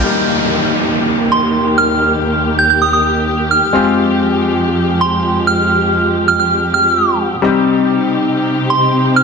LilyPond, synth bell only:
\new Staff \with { instrumentName = "Synth bell" } { \time 4/4 \key ees \major \tempo 4 = 130 r2 r8. c'''16 r8. f'''16~ | f'''4~ f'''16 r16 g'''16 g'''16 ees'''16 ees'''16 r4 f'''8 | r2 r8. c'''16 r8. f'''16~ | f'''4~ f'''16 r16 f'''16 f'''16 r8 f'''8. r8. |
r2 r8. c'''16 r8. f'''16 | }